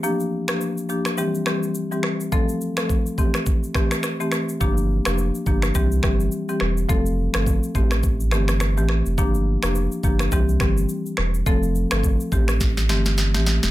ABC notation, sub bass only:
X:1
M:4/4
L:1/16
Q:"Swing 16ths" 1/4=105
K:Cmix
V:1 name="Sub bass" clef=bass
z16 | z16 | G,,,3 F,,,2 z G,,,2 C,,2 G,,,2 z2 E,,,2 | F,,,3 G,,,2 z A,,,4 G,,,3 A,,,2 F,,, |
G,,,3 F,,,2 z G,,,2 C,,2 G,,,2 z2 E,,,2 | F,,,3 G,,,2 z A,,,4 G,,,3 A,,,2 F,,, |]